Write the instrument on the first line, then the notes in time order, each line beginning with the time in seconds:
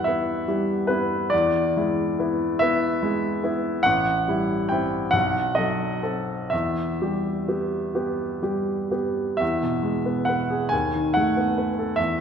grand piano
Already playing: E2 G3 B3 E4 E5 F#5
0.04 B3 E4 E5
0.48 G3 E4
0.87 B3 E4 B4
1.30 E2 D5
1.77 G#3 E4
2.19 B3 E4
2.59 B3 E4 E5
3.02 G#3 E4
3.44 B3 E4
3.83 A1 F#5
4.28 G3 E4
4.69 C4 E4 G5
5.11 B1 F#5
5.55 F#3 A4 D#5
6.03 C4 A4
6.50 E2 E5
7.02 G3 G4
7.48 B3 G4
7.95 B3 G4
8.42 G3 G4
8.91 B3 G4
9.37 E2 E5
9.63 B2
9.83 G#3
10.05 B3
10.25 B4 F#5
10.50 G#4
10.69 D#2 G#5
10.95 D#3
11.14 A3 F#5
11.37 B3
11.58 B4
11.79 A4
11.96 E2 E5